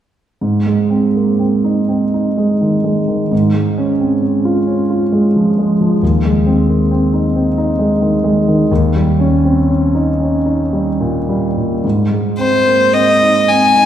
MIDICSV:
0, 0, Header, 1, 3, 480
1, 0, Start_track
1, 0, Key_signature, -4, "major"
1, 0, Tempo, 980392
1, 202, Time_signature, 6, 3, 24, 8
1, 1163, Tempo, 943396
1, 1643, Tempo, 896861
1, 4523, Tempo, 981997
1, 5003, Tempo, 1041667
1, 5483, Tempo, 1109057
1, 6443, Tempo, 1065719
1, 6854, End_track
2, 0, Start_track
2, 0, Title_t, "Violin"
2, 0, Program_c, 0, 40
2, 6202, Note_on_c, 0, 72, 45
2, 6439, Note_on_c, 0, 75, 47
2, 6445, Note_off_c, 0, 72, 0
2, 6688, Note_on_c, 0, 80, 49
2, 6694, Note_off_c, 0, 75, 0
2, 6854, Note_off_c, 0, 80, 0
2, 6854, End_track
3, 0, Start_track
3, 0, Title_t, "Grand piano"
3, 0, Program_c, 1, 0
3, 203, Note_on_c, 1, 44, 31
3, 285, Control_c, 1, 64, 127
3, 324, Note_on_c, 1, 56, 27
3, 441, Note_on_c, 1, 60, 27
3, 516, Note_off_c, 1, 56, 0
3, 566, Note_on_c, 1, 58, 24
3, 635, Note_off_c, 1, 60, 0
3, 682, Note_on_c, 1, 60, 26
3, 685, Note_off_c, 1, 58, 0
3, 803, Note_on_c, 1, 63, 29
3, 875, Note_off_c, 1, 60, 0
3, 923, Note_on_c, 1, 60, 26
3, 996, Note_off_c, 1, 63, 0
3, 1046, Note_on_c, 1, 63, 27
3, 1116, Note_off_c, 1, 60, 0
3, 1161, Note_on_c, 1, 56, 30
3, 1239, Note_off_c, 1, 63, 0
3, 1284, Note_on_c, 1, 51, 28
3, 1358, Note_off_c, 1, 56, 0
3, 1400, Note_on_c, 1, 56, 27
3, 1478, Note_off_c, 1, 51, 0
3, 1520, Note_on_c, 1, 51, 27
3, 1594, Note_off_c, 1, 56, 0
3, 1625, Note_off_c, 1, 44, 0
3, 1641, Note_off_c, 1, 51, 0
3, 1641, Note_on_c, 1, 44, 33
3, 1652, Control_c, 1, 64, 0
3, 1730, Control_c, 1, 64, 127
3, 1762, Note_on_c, 1, 56, 28
3, 1889, Note_on_c, 1, 61, 29
3, 1958, Note_off_c, 1, 56, 0
3, 2008, Note_on_c, 1, 60, 23
3, 2081, Note_off_c, 1, 61, 0
3, 2128, Note_off_c, 1, 60, 0
3, 2129, Note_on_c, 1, 61, 25
3, 2248, Note_on_c, 1, 65, 30
3, 2320, Note_off_c, 1, 61, 0
3, 2365, Note_on_c, 1, 61, 28
3, 2440, Note_off_c, 1, 65, 0
3, 2489, Note_on_c, 1, 65, 29
3, 2559, Note_off_c, 1, 61, 0
3, 2609, Note_on_c, 1, 56, 34
3, 2682, Note_off_c, 1, 65, 0
3, 2734, Note_on_c, 1, 53, 29
3, 2802, Note_off_c, 1, 56, 0
3, 2855, Note_on_c, 1, 56, 34
3, 2924, Note_off_c, 1, 53, 0
3, 2975, Note_on_c, 1, 53, 32
3, 3043, Note_off_c, 1, 56, 0
3, 3065, Note_off_c, 1, 44, 0
3, 3090, Note_off_c, 1, 53, 0
3, 3091, Note_on_c, 1, 39, 35
3, 3096, Control_c, 1, 64, 0
3, 3179, Control_c, 1, 64, 127
3, 3211, Note_on_c, 1, 56, 34
3, 3324, Note_on_c, 1, 60, 32
3, 3399, Note_off_c, 1, 56, 0
3, 3445, Note_on_c, 1, 58, 27
3, 3515, Note_off_c, 1, 60, 0
3, 3563, Note_off_c, 1, 58, 0
3, 3567, Note_on_c, 1, 60, 32
3, 3685, Note_on_c, 1, 63, 32
3, 3754, Note_off_c, 1, 60, 0
3, 3804, Note_on_c, 1, 60, 32
3, 3870, Note_off_c, 1, 63, 0
3, 3921, Note_on_c, 1, 63, 34
3, 3989, Note_off_c, 1, 60, 0
3, 4036, Note_on_c, 1, 56, 35
3, 4107, Note_off_c, 1, 63, 0
3, 4157, Note_on_c, 1, 51, 34
3, 4226, Note_off_c, 1, 56, 0
3, 4277, Note_on_c, 1, 56, 38
3, 4350, Note_off_c, 1, 51, 0
3, 4403, Note_on_c, 1, 51, 34
3, 4475, Note_off_c, 1, 56, 0
3, 4504, Note_off_c, 1, 39, 0
3, 4527, Note_off_c, 1, 51, 0
3, 4528, Note_on_c, 1, 39, 44
3, 4532, Control_c, 1, 64, 0
3, 4626, Control_c, 1, 64, 127
3, 4648, Note_on_c, 1, 55, 36
3, 4766, Note_on_c, 1, 61, 39
3, 4836, Note_off_c, 1, 55, 0
3, 4887, Note_on_c, 1, 60, 33
3, 4957, Note_off_c, 1, 61, 0
3, 5006, Note_off_c, 1, 60, 0
3, 5009, Note_on_c, 1, 61, 32
3, 5125, Note_on_c, 1, 63, 33
3, 5194, Note_off_c, 1, 61, 0
3, 5242, Note_on_c, 1, 61, 31
3, 5313, Note_off_c, 1, 63, 0
3, 5360, Note_on_c, 1, 63, 35
3, 5435, Note_off_c, 1, 61, 0
3, 5484, Note_on_c, 1, 55, 34
3, 5555, Note_off_c, 1, 63, 0
3, 5604, Note_on_c, 1, 46, 33
3, 5678, Note_off_c, 1, 55, 0
3, 5727, Note_on_c, 1, 55, 35
3, 5802, Note_off_c, 1, 46, 0
3, 5851, Note_on_c, 1, 46, 31
3, 5921, Note_off_c, 1, 55, 0
3, 5951, Note_off_c, 1, 39, 0
3, 5967, Note_off_c, 1, 46, 0
3, 5967, Note_on_c, 1, 44, 35
3, 5975, Control_c, 1, 64, 0
3, 6051, Control_c, 1, 64, 127
3, 6083, Note_on_c, 1, 56, 28
3, 6201, Note_on_c, 1, 60, 27
3, 6273, Note_off_c, 1, 56, 0
3, 6325, Note_on_c, 1, 58, 24
3, 6395, Note_off_c, 1, 60, 0
3, 6443, Note_on_c, 1, 60, 27
3, 6445, Note_off_c, 1, 58, 0
3, 6569, Note_on_c, 1, 63, 26
3, 6642, Note_off_c, 1, 60, 0
3, 6693, Note_on_c, 1, 60, 27
3, 6761, Note_off_c, 1, 63, 0
3, 6808, Note_on_c, 1, 63, 31
3, 6854, Note_off_c, 1, 44, 0
3, 6854, Note_off_c, 1, 60, 0
3, 6854, Note_off_c, 1, 63, 0
3, 6854, End_track
0, 0, End_of_file